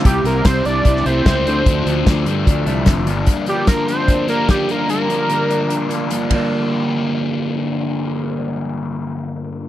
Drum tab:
RD |----------------|----------------|----------------|--------------x-|
HH |x-x-x-x-x-x-x-x-|x-x-x-x-x-x-x-x-|x-x-x-x-x-x-x-x-|x-x-x-x-x-x-x---|
SD |----o----o--o---|----o-------o---|----o-------o---|----------------|
BD |o---o---o---o---|o---o---o---o---|o---o---o---o---|--------------o-|

RD |----------------|----------------|
HH |----------------|----------------|
SD |----------------|----------------|
BD |----------------|----------------|